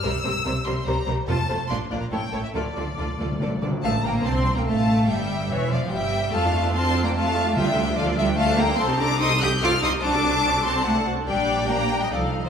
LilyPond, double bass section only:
\new Staff \with { instrumentName = "Double bass section" } { \clef bass \time 3/4 \key d \minor \tempo 4 = 145 c,8 c,8 c,8 c,8 c,8 c,8 | f,,8 f,,8 bes,,8 bes,,8 a,,8 a,,8 | d,8 d,8 d,8 d,8 d,8 d,8 | a,,8 bes,,8 c,8. bes,,16 a,,4 |
g,,4 e,,8 f,,8 g,,4 | f,2. | d,2. | \key g \minor c,2.~ |
c,2. | bes,,2 c,4 | }